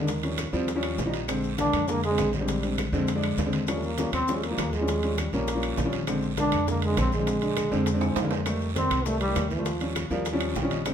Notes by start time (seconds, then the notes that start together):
Already playing: D#2 D#3
0.00 D3 G#3 D4
0.08 high bongo, high timbale, long guiro, maracas
0.23 F3 G3 C#4, high bongo, high conga, high timbale, maracas
0.38 high bongo, high conga, high timbale, low timbale, short guiro, claves, maracas
0.53 D#2 F3 G3 C4, high bongo, high conga, short guiro, maracas
0.68 high bongo, high conga, high timbale, long guiro, maracas
0.75 F3 G3 C#4
0.83 high bongo, high conga, high timbale, claves, maracas
0.98 A#1, high bongo, low bongo, high conga, low timbale, short guiro, maracas
1.06 F3 G3 D#4
1.13 high timbale, short guiro, maracas
1.28 D3 G#3 C4, high bongo, high timbale, long guiro, claves, maracas
1.43 high bongo, maracas
1.58 D3 G#3 A#3 D4, high bongo, high conga, high timbale, low timbale, short guiro, maracas
1.73 F2, high bongo, high conga, low conga, high timbale, short guiro, claves, maracas
1.88 D3 G#3 A#3, high bongo, high conga, long guiro, maracas
2.03 G#3, high bongo, high conga, high timbale, maracas
2.10 D3 G#3 C4
2.18 A#1, high bongo, low bongo, high conga, high timbale, low timbale, short guiro, claves, maracas
2.33 G3, high conga, short guiro, maracas
2.41 D3 G#3 C4
2.48 high bongo, high timbale, long guiro, maracas
2.63 D3 G#3 C4, high bongo, high conga, high timbale, maracas
2.78 high bongo, high conga, high timbale, low timbale, short guiro, claves, maracas
2.92 F2 D3 G#3 C4, high bongo, short guiro, maracas
3.08 high bongo, high timbale, long guiro, maracas
3.16 D3 G#3 D4
3.22 high bongo, high timbale, claves, maracas
3.37 D#2, high bongo, low bongo, high conga, low timbale, short guiro, maracas
3.46 D3 G#3 C4
3.53 high timbale, short guiro, maracas
3.67 F3 G3 C#4, high bongo, high timbale, long guiro, claves, maracas
3.76 A3
3.83 A#3, high bongo, high conga, maracas
3.98 F3 G3 C#4, high bongo, high conga, high timbale, low timbale, short guiro, maracas
4.12 D#2 C4, high bongo, high conga, low conga, high timbale, short guiro, claves, maracas
4.28 F3 G3 C#4, high bongo, high conga, long guiro, maracas
4.36 G#3
4.43 A#3, high bongo, high conga, high timbale, maracas
4.51 F3 G3 A#3
4.58 D#2, high bongo, low bongo, high conga, high timbale, low timbale, short guiro, claves, maracas
4.73 G#3, high conga, short guiro, maracas
4.81 F3 G3 C#4
4.88 high bongo, high conga, high timbale, long guiro, maracas
5.03 F3 G3 C#4, high bongo, high conga, high timbale, maracas
5.18 G3, high bongo, high conga, high timbale, low timbale, short guiro, claves, maracas
5.33 A#1 F3 G3 A#3 C#4, high bongo, high conga, short guiro, maracas
5.48 high bongo, high conga, high timbale, long guiro, maracas
5.55 F3 G3 C#4
5.63 high bongo, high conga, high timbale, claves, maracas
5.77 A#1, high bongo, low bongo, high conga, low timbale, short guiro, maracas
5.85 F3 G3 C#4
5.93 high conga, high timbale, short guiro, maracas
6.07 D3 G#3 C4, high bongo, high conga, high timbale, long guiro, claves, maracas
6.23 high bongo, maracas
6.37 D3 G#3 A#3 D4, high bongo, high conga, high timbale, low timbale, short guiro, maracas
6.52 F2, high bongo, high conga, low conga, high timbale, short guiro, claves, maracas
6.67 D3 G#3 A#3, high bongo, high conga, low conga, long guiro, maracas
6.82 G#3, high bongo, high timbale, maracas
6.89 D3 G#3 A#3
6.97 A#1 C4, high bongo, low bongo, high conga, high timbale, low timbale, short guiro, claves, maracas
7.12 G#3, high conga, short guiro, maracas
7.19 D3 G#3 C4
7.27 high bongo, high timbale, long guiro, maracas
7.42 D3 G#3 D4, high bongo, high conga, high timbale, maracas
7.57 high bongo, high conga, high timbale, low timbale, short guiro, claves, maracas
7.71 F2 D3 G#3 C4, high bongo, high conga, short guiro, maracas
7.86 high bongo, high timbale, long guiro, maracas
7.94 D3 G#3 C4
8.01 G#5, high bongo, high conga, high timbale, claves, maracas
8.16 F2 F5, high bongo, low bongo, high conga, high timbale, short guiro, maracas
8.23 D3 G#3 A#3
8.31 C5, low timbale, short guiro, maracas
8.46 D#3 G3 A3, high bongo, high timbale, long guiro, claves, maracas
8.61 high bongo, high conga, maracas
8.75 D#3 G3 C4, high bongo, high conga, high timbale, low timbale, short guiro, maracas
8.90 C2, high bongo, high conga, low conga, high timbale, short guiro, claves, maracas
9.05 D#3 G3 A3, high bongo, high conga, long guiro, maracas
9.20 G3, high bongo, high conga, high timbale, maracas
9.28 D#3 G3 A3
9.36 D#2, high bongo, low bongo, high conga, high timbale, low timbale, short guiro, claves, maracas
9.50 F3, high conga, short guiro, maracas
9.58 D#3 G3 A3
9.65 high bongo, high conga, high timbale, long guiro, maracas
9.81 F3 G3 C#4, high bongo, high conga, high timbale, maracas
9.95 high bongo, high conga, high timbale, low timbale, short guiro, claves, maracas
10.10 D#2 F3 G3 A#3, high bongo, high conga, short guiro, maracas
10.25 high bongo, high conga, high timbale, long guiro, maracas
10.33 F3 G3 C#4
10.40 high bongo, high conga, high timbale, claves, maracas
10.55 A#1 G5, high bongo, low bongo, high conga, low timbale, short guiro, maracas
10.62 F3 G3 C#4
10.70 D#5, high conga, high timbale, short guiro, maracas
10.85 D3 G#3 C4, high bongo, high conga, high timbale, long guiro, claves, maracas